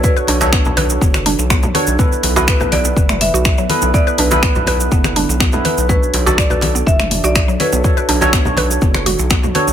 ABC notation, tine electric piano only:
X:1
M:4/4
L:1/16
Q:1/4=123
K:Bm
V:1 name="Tine electric piano"
[DFAc]3 [DFAc]8- [DFAc]3 [DFAc]2 | [B,EAB]3 [B,EAB]8- [B,EAB]3 [B,EAB]2 | [B,EAB]3 [B,EAB]8- [B,EAB]2 [B,EAB]3 | [DFAc]3 [DFAd]8- [DFAd]3 [DFAc]2 |
[DFAc]3 [DFAc]8- [DFAc]3 [DFAc]2 |]